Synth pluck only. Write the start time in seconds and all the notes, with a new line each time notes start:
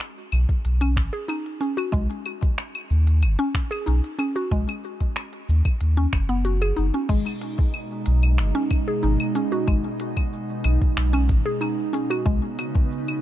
0.81 C#4
1.13 G#4
1.28 D#4
1.61 C#4
1.77 F#4
1.92 G#3
3.39 C#4
3.71 G#4
3.86 D#4
4.19 C#4
4.36 F#4
4.51 G#3
5.97 C#4
6.29 B3
6.45 F#4
6.62 G#4
6.77 D#4
6.94 C#4
7.09 G#3
8.55 C#4
8.88 G#4
9.03 D#4
9.35 C#4
9.52 F#4
9.68 G#3
11.13 C#4
11.46 G#4
11.61 D#4
11.93 C#4
12.10 F#4
12.26 G#3